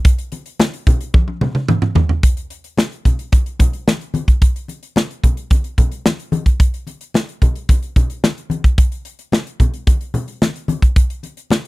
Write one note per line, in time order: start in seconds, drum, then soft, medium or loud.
0.05 kick loud
0.05 closed hi-hat medium
0.18 closed hi-hat medium
0.32 closed hi-hat medium
0.32 muted conga soft
0.46 closed hi-hat medium
0.60 snare loud
0.60 high conga medium
0.73 closed hi-hat medium
0.87 kick medium
0.87 closed hi-hat medium
0.87 low conga medium
1.01 closed hi-hat medium
1.14 kick loud
1.14 high tom medium
1.14 muted conga medium
1.28 high tom medium
1.41 mid tom medium
1.41 muted conga soft
1.41 low conga medium
1.55 mid tom medium
1.68 mid tom loud
1.68 high conga medium
1.82 mid tom medium
1.95 floor tom loud
1.95 high conga medium
2.09 floor tom medium
2.23 kick loud
2.23 closed hi-hat medium
2.37 closed hi-hat medium
2.50 closed hi-hat medium
2.64 closed hi-hat soft
2.77 snare loud
2.77 high conga medium
2.92 closed hi-hat soft
3.05 kick medium
3.05 closed hi-hat medium
3.05 low conga medium
3.19 closed hi-hat medium
3.32 kick loud
3.32 closed hi-hat medium
3.32 muted conga soft
3.46 closed hi-hat soft
3.59 kick loud
3.59 closed hi-hat medium
3.59 muted conga soft
3.59 low conga medium
3.73 closed hi-hat soft
3.88 snare loud
3.88 high conga medium
4.01 closed hi-hat medium
4.14 closed hi-hat medium
4.14 high conga medium
4.28 kick medium
4.28 closed hi-hat soft
4.42 kick loud
4.42 closed hi-hat medium
4.56 closed hi-hat medium
4.68 closed hi-hat medium
4.68 muted conga soft
4.83 closed hi-hat medium
4.96 snare loud
4.96 high conga medium
5.11 closed hi-hat soft
5.24 kick medium
5.24 closed hi-hat medium
5.24 low conga medium
5.37 closed hi-hat medium
5.50 kick loud
5.50 closed hi-hat medium
5.50 muted conga soft
5.64 closed hi-hat soft
5.78 kick medium
5.78 closed hi-hat medium
5.78 muted conga soft
5.78 low conga medium
5.92 closed hi-hat soft
6.06 snare loud
6.06 high conga medium
6.19 closed hi-hat medium
6.32 closed hi-hat medium
6.32 high conga medium
6.46 kick medium
6.46 closed hi-hat medium
6.60 kick loud
6.60 closed hi-hat medium
6.74 closed hi-hat medium
6.87 closed hi-hat medium
6.87 muted conga soft
7.01 closed hi-hat medium
7.14 snare loud
7.14 high conga medium
7.29 closed hi-hat soft
7.42 kick medium
7.42 closed hi-hat medium
7.42 low conga medium
7.56 closed hi-hat medium
7.69 kick loud
7.69 closed hi-hat medium
7.69 muted conga soft
7.83 closed hi-hat soft
7.96 kick medium
7.96 closed hi-hat medium
7.96 muted conga soft
7.96 low conga medium
8.10 closed hi-hat soft
8.24 snare loud
8.24 high conga medium
8.38 closed hi-hat medium
8.50 closed hi-hat medium
8.50 high conga medium
8.64 kick medium
8.64 closed hi-hat soft
8.78 kick loud
8.78 closed hi-hat medium
8.92 closed hi-hat soft
9.05 closed hi-hat medium
9.19 closed hi-hat medium
9.32 snare loud
9.32 high conga medium
9.47 closed hi-hat medium
9.60 kick medium
9.60 closed hi-hat medium
9.60 low conga medium
9.74 closed hi-hat soft
9.87 kick loud
9.87 closed hi-hat medium
9.87 muted conga medium
10.01 closed hi-hat soft
10.14 closed hi-hat medium
10.14 muted conga soft
10.14 low conga medium
10.28 closed hi-hat soft
10.42 snare loud
10.42 high conga medium
10.56 closed hi-hat soft
10.68 closed hi-hat medium
10.68 high conga medium
10.82 kick medium
10.82 closed hi-hat soft
10.96 kick loud
10.96 closed hi-hat medium
11.10 closed hi-hat medium
11.23 closed hi-hat medium
11.23 muted conga soft
11.37 closed hi-hat medium
11.50 snare loud
11.50 high conga medium